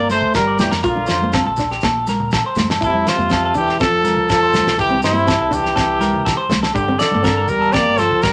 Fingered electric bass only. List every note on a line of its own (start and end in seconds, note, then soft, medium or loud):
0.00 0.20 G1 medium
0.35 0.67 G1 medium
0.73 0.83 F2 medium
0.84 1.05 A#1 medium
1.10 1.41 F2 medium
1.47 1.78 A#1 medium
1.83 2.15 A#1 medium
2.20 2.41 A#2 medium
2.57 2.78 F#1 loud
2.82 3.03 F1 loud
3.18 3.50 F2 medium
3.56 3.94 E1 loud
3.94 4.14 F1 medium
4.30 4.61 F1 medium
4.66 4.77 A#1 medium
4.79 5.00 C2 loud
5.03 5.35 G2 medium
5.41 5.72 C2 medium
5.77 6.09 C2 loud
6.14 6.35 C3 medium
6.49 6.71 C2 loud
6.75 6.96 G1 loud
7.14 7.45 G2 medium
7.50 7.88 E1 medium
7.88 8.08 G1 medium
8.23 8.33 G1 medium